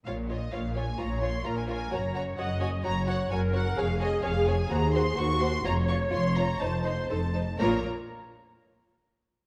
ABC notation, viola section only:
X:1
M:4/4
L:1/8
Q:1/4=127
K:Bbm
V:1 name="Viola section"
z4 d2 B2 | d2 e2 d2 B2 | A6 G2 | d4 c2 =A z |
[B,F] z6 z |]